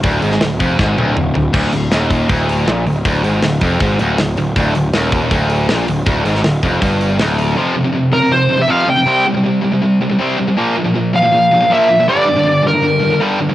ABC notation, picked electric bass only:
X:1
M:4/4
L:1/8
Q:1/4=159
K:Dm
V:1 name="Picked electric bass" clef=bass
D,,, ^G,,, D,,, F,,, G,,, D,,, D,,, D,,, | D,,, D,,, _E,,,2 D,,,2 B,,, D,,, | D,,, ^G,,, D,,, F,,, G,,, D,,, D,,, D,,, | D,,, D,,, _E,,,2 D,,,2 B,,, D,,, |
D,,, ^G,,, D,,, F,,, =G,,,2 D,,,2 | z8 | z8 | z8 |
z8 |]